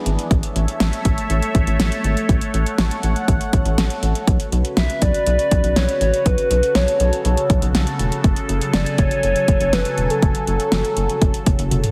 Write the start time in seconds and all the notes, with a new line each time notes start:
Already playing: E3 B3 D4 G#4
0.06 G#1, closed hi-hat
0.19 closed hi-hat
0.31 A1 A3 A4 C#5 E5, kick, closed hi-hat
0.43 closed hi-hat
0.56 A1, closed hi-hat
0.68 closed hi-hat
0.80 A1, snare, closed hi-hat
0.93 closed hi-hat
1.05 A1, kick, closed hi-hat
1.18 closed hi-hat
1.30 A1, closed hi-hat
1.42 closed hi-hat
1.55 A1, kick, closed hi-hat
1.67 A1, closed hi-hat
1.80 A1, snare, closed hi-hat
1.92 closed hi-hat
2.04 G#1, closed hi-hat
2.17 closed hi-hat
2.29 A1 F#5, kick, closed hi-hat
2.41 closed hi-hat
2.54 A1, closed hi-hat
2.66 closed hi-hat
2.78 A1, snare, closed hi-hat
2.91 closed hi-hat
3.03 A1, closed hi-hat
3.16 closed hi-hat
3.28 A1, kick, closed hi-hat
3.41 closed hi-hat
3.53 A1, kick, closed hi-hat
3.65 A1, closed hi-hat
3.78 A1, snare, closed hi-hat
3.90 closed hi-hat
4.03 A1, closed hi-hat
4.15 closed hi-hat
4.27 B1 C#3 F#4 B4, kick, closed hi-hat
4.40 closed hi-hat
4.52 B1, closed hi-hat
4.65 closed hi-hat
4.77 B1 E5, snare, closed hi-hat
4.90 closed hi-hat
5.02 B1 D5, kick, closed hi-hat
5.14 closed hi-hat
5.26 B1, closed hi-hat
5.39 closed hi-hat
5.51 B1, kick, closed hi-hat
5.64 B1, closed hi-hat
5.76 B1 C#5, snare, closed hi-hat
5.89 closed hi-hat
6.01 A1 C#5, closed hi-hat
6.14 closed hi-hat
6.26 B1 A4 B4, kick, closed hi-hat
6.38 closed hi-hat
6.51 B1 B4, closed hi-hat
6.63 closed hi-hat
6.75 B1 C#5, snare, closed hi-hat
6.88 closed hi-hat
7.00 B1, closed hi-hat
7.13 closed hi-hat
7.25 B1, closed hi-hat
7.37 closed hi-hat
7.50 B1, kick, closed hi-hat
7.62 B1, closed hi-hat
7.75 B1, snare, closed hi-hat
7.87 closed hi-hat
7.99 E1, closed hi-hat
8.12 closed hi-hat
8.24 F#1 F#3 G#5, kick, closed hi-hat
8.36 closed hi-hat
8.49 F#1, closed hi-hat
8.61 closed hi-hat
8.73 F#1 D5, snare, closed hi-hat
8.86 closed hi-hat
8.98 F#1 C#5, kick, closed hi-hat
9.11 closed hi-hat
9.23 F#1, closed hi-hat
9.36 closed hi-hat
9.48 F#1, kick, closed hi-hat
9.61 F#1, closed hi-hat
9.73 F#1 B4, snare, closed hi-hat
9.85 closed hi-hat
9.98 E1, closed hi-hat
10.10 A4, closed hi-hat
10.22 F#1 A4, kick, closed hi-hat
10.35 closed hi-hat
10.47 F#1, closed hi-hat
10.60 closed hi-hat
10.72 F#1, snare, closed hi-hat
10.85 closed hi-hat
10.97 F#1, closed hi-hat
11.10 closed hi-hat
11.22 F#1, kick, closed hi-hat
11.34 closed hi-hat
11.46 F#1, kick, closed hi-hat
11.59 F#1, closed hi-hat
11.71 F#1, closed hi-hat, high tom
11.84 closed hi-hat, mid tom